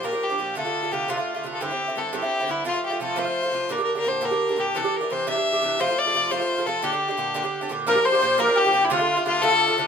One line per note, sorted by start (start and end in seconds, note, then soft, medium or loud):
0.03 0.13 A#2 medium
0.03 0.13 F3 medium
0.03 0.12 D4 medium
0.03 0.10 G4 medium
0.03 0.25 A#4 medium
0.12 0.31 F3 soft
0.12 0.30 D4 soft
0.12 0.29 G4 soft
0.24 0.57 G4 medium
0.30 0.38 F3 soft
0.30 0.38 D4 soft
0.30 0.39 G4 soft
0.38 0.55 A#2 soft
0.38 0.55 F3 soft
0.38 0.56 D4 medium
0.38 0.57 G4 soft
0.55 0.65 C3 medium
0.55 0.65 D3 medium
0.55 0.65 A3 medium
0.55 0.64 F4 medium
0.55 0.94 A4 medium
0.65 0.84 D3 soft
0.65 0.83 A3 soft
0.65 0.82 F4 soft
0.83 0.91 D3 soft
0.83 0.92 A3 soft
0.83 0.91 F4 soft
0.92 1.07 C3 soft
0.92 1.08 D3 medium
0.92 1.08 A3 medium
0.92 1.09 F4 medium
0.92 1.11 G4 medium
1.08 1.18 C3 medium
1.08 1.18 D3 medium
1.08 1.17 A3 medium
1.08 1.49 F4 medium
1.08 1.16 F4 medium
1.17 1.36 D3 soft
1.17 1.35 A3 soft
1.17 1.33 F4 soft
1.34 1.43 D3 soft
1.34 1.44 A3 soft
1.34 1.44 F4 medium
1.44 1.60 C3 soft
1.44 1.60 D3 medium
1.44 1.62 A3 soft
1.44 1.62 F4 medium
1.54 1.64 A4 medium
1.61 1.70 G2 medium
1.61 1.70 D3 medium
1.61 1.71 C4 medium
1.61 1.69 E4 medium
1.61 2.00 G4 medium
1.71 1.89 D3 soft
1.71 1.88 C4 soft
1.71 1.86 E4 soft
1.88 1.95 D3 soft
1.88 1.96 C4 soft
1.88 1.96 E4 soft
1.96 2.12 G2 soft
1.96 2.12 D3 soft
1.96 2.12 C4 medium
1.96 2.13 E4 medium
1.96 2.07 A4 medium
2.07 2.17 A4 medium
2.13 2.22 G2 medium
2.13 2.22 D3 medium
2.13 2.23 C4 medium
2.13 2.21 E4 medium
2.13 2.52 G4 medium
2.22 2.41 D3 soft
2.22 2.40 C4 soft
2.22 2.39 E4 soft
2.40 2.48 D3 soft
2.40 2.48 C4 soft
2.40 2.49 E4 soft
2.48 2.64 G2 soft
2.48 2.65 D3 medium
2.48 2.65 C4 medium
2.48 2.66 E4 medium
2.64 2.74 C3 medium
2.64 2.75 F3 medium
2.64 2.74 A3 medium
2.64 2.83 F4 medium
2.64 2.73 F4 medium
2.74 2.92 F3 soft
2.74 2.91 A3 soft
2.74 2.89 F4 soft
2.85 3.01 G4 medium
2.90 3.00 F3 soft
2.90 3.00 A3 soft
2.90 3.00 F4 soft
3.00 3.15 C3 medium
3.00 3.16 F3 medium
3.00 3.16 A3 medium
3.00 3.17 F4 medium
3.00 3.20 A4 medium
3.16 3.26 C3 medium
3.16 3.26 F3 medium
3.16 3.25 A3 medium
3.16 3.23 F4 medium
3.16 3.74 C5 medium
3.25 3.44 F3 soft
3.25 3.43 A3 soft
3.25 3.42 F4 soft
3.43 3.52 F3 soft
3.43 3.52 A3 soft
3.43 3.52 F4 soft
3.52 3.69 C3 soft
3.52 3.69 F3 soft
3.52 3.70 A3 soft
3.52 3.71 F4 medium
3.69 3.79 A#2 medium
3.69 3.79 D3 medium
3.69 3.78 D4 medium
3.69 3.77 G4 medium
3.69 3.83 A#4 medium
3.78 3.97 D3 soft
3.78 3.96 D4 soft
3.78 3.94 G4 soft
3.84 3.95 A#4 medium
3.95 4.05 D3 soft
3.95 4.05 D4 soft
3.95 4.05 G4 soft
3.95 4.10 A#4 loud
4.04 4.20 A#2 medium
4.04 4.21 D3 soft
4.04 4.21 D4 soft
4.04 4.22 G4 medium
4.04 4.27 C5 medium
4.21 4.31 A#2 medium
4.21 4.31 D3 medium
4.21 4.31 D4 medium
4.21 4.30 G4 medium
4.25 4.62 A#4 medium
4.31 4.50 D3 soft
4.31 4.49 D4 soft
4.31 4.48 G4 soft
4.49 4.56 D3 soft
4.49 4.57 D4 soft
4.49 4.58 G4 medium
4.56 4.74 A#2 medium
4.56 4.75 D3 medium
4.56 4.75 D4 medium
4.56 4.75 G4 soft
4.56 4.78 G4 medium
4.75 4.84 C3 medium
4.75 4.84 E3 medium
4.75 4.84 D4 medium
4.75 4.83 G4 medium
4.75 4.98 A4 medium
4.84 5.02 E3 soft
4.84 5.01 D4 soft
4.84 5.00 G4 medium
4.96 5.14 A#4 medium
5.01 5.09 E3 soft
5.01 5.10 D4 soft
5.01 5.10 G4 soft
5.10 5.26 C3 medium
5.10 5.26 E3 medium
5.10 5.26 D4 medium
5.10 5.27 G4 medium
5.10 5.28 C5 loud
5.27 5.36 C3 medium
5.27 5.36 E3 medium
5.27 5.36 D4 medium
5.27 5.34 G4 medium
5.27 5.82 E5 loud
5.36 5.54 E3 soft
5.36 5.52 D4 soft
5.36 5.51 G4 soft
5.53 5.62 E3 soft
5.53 5.62 D4 soft
5.53 5.62 G4 soft
5.62 5.78 C3 medium
5.62 5.79 E3 medium
5.62 5.80 D4 medium
5.62 5.80 G4 medium
5.79 5.88 C3 medium
5.79 5.88 F3 medium
5.79 5.88 A3 medium
5.79 5.87 F4 medium
5.79 6.00 C5 loud
5.88 6.06 F3 soft
5.88 6.06 A3 soft
5.88 6.04 F4 soft
5.98 6.33 D5 loud
6.06 6.14 F3 soft
6.06 6.15 A3 soft
6.06 6.14 F4 medium
6.14 6.29 C3 medium
6.14 6.30 F3 medium
6.14 6.30 A3 medium
6.14 6.31 F4 medium
6.30 6.40 C3 medium
6.30 6.40 F3 medium
6.30 6.40 A3 medium
6.30 6.38 F4 medium
6.30 6.68 C5 loud
6.40 6.59 F3 soft
6.40 6.58 A3 soft
6.40 6.57 F4 soft
6.58 6.66 F3 soft
6.58 6.66 A3 soft
6.58 6.66 F4 soft
6.66 6.82 C3 soft
6.66 6.83 F3 medium
6.66 6.83 A3 medium
6.66 6.84 F4 medium
6.66 6.86 A4 medium
6.82 6.92 A#2 medium
6.82 6.92 D3 medium
6.82 6.92 D4 medium
6.82 6.90 G4 medium
6.82 7.71 G4 medium
6.92 7.10 D3 soft
6.92 7.09 D4 soft
6.92 7.07 G4 soft
7.08 7.17 D3 soft
7.08 7.18 D4 soft
7.08 7.17 G4 soft
7.17 7.33 A#2 medium
7.17 7.34 D3 medium
7.17 7.34 D4 medium
7.17 7.35 G4 medium
7.34 7.44 A#2 medium
7.34 7.44 D3 medium
7.34 7.44 D4 medium
7.34 7.42 G4 medium
7.43 7.62 D3 soft
7.43 7.61 D4 soft
7.43 7.60 G4 medium
7.61 7.69 D3 soft
7.61 7.70 D4 medium
7.61 7.70 G4 medium
7.69 7.85 A#2 medium
7.69 7.87 D3 medium
7.69 7.87 D4 medium
7.69 7.87 G4 medium
7.86 7.96 A#2 medium
7.86 7.96 F3 medium
7.86 7.96 D4 medium
7.86 7.94 G4 medium
7.86 8.06 A#4 medium
7.86 8.04 A#4 loud
7.86 8.07 A#4 loud
7.95 8.14 F3 soft
7.95 8.12 D4 soft
7.95 8.11 G4 soft
8.05 8.15 C5 loud
8.05 8.21 C5 medium
8.05 8.42 C5 loud
8.12 8.21 F3 soft
8.12 8.22 D4 soft
8.12 8.21 G4 soft
8.16 8.26 C5 medium
8.21 8.37 A#2 medium
8.21 8.38 F3 medium
8.21 8.38 D4 medium
8.21 8.39 G4 medium
8.21 8.38 C5 medium
8.27 8.38 C5 medium
8.38 8.48 A#2 medium
8.38 8.48 F3 medium
8.38 8.47 D4 medium
8.38 8.46 G4 medium
8.38 8.56 A#4 medium
8.38 8.58 A#4 medium
8.38 8.59 A#4 loud
8.47 8.66 F3 soft
8.47 8.65 D4 soft
8.47 8.64 G4 soft
8.56 8.88 G4 medium
8.56 8.91 G4 medium
8.56 8.86 G4 loud
8.65 8.72 F3 soft
8.65 8.74 D4 soft
8.65 8.74 G4 medium
8.73 8.90 A#2 medium
8.73 8.90 F3 medium
8.73 8.91 D4 medium
8.73 8.91 G4 medium
8.85 8.92 E4 medium
8.89 9.00 C3 medium
8.89 9.00 D3 medium
8.89 8.99 A3 loud
8.89 9.24 F4 medium
8.89 9.26 F4 loud
8.89 9.24 F4 medium
8.89 8.98 F4 medium
8.99 9.18 D3 soft
8.99 9.16 A3 soft
8.99 9.15 F4 medium
9.17 9.25 D3 soft
9.17 9.26 A3 soft
9.17 9.26 F4 medium
9.25 9.40 C3 medium
9.25 9.42 D3 medium
9.25 9.42 A3 medium
9.25 9.43 F4 medium
9.25 9.42 F4 medium
9.25 9.44 F4 loud
9.25 9.42 F4 medium
9.42 9.51 C3 medium
9.42 9.52 D3 medium
9.42 9.50 A3 medium
9.42 9.49 F4 medium
9.42 9.79 A4 medium
9.42 9.82 A4 loud
9.42 9.80 A4 medium
9.50 9.69 D3 soft
9.50 9.68 A3 soft
9.50 9.66 F4 medium
9.68 9.77 D3 soft
9.68 9.77 A3 soft
9.68 9.77 F4 medium
9.77 9.87 C3 soft
9.77 9.87 D3 medium
9.77 9.87 A3 medium
9.77 9.87 F4 medium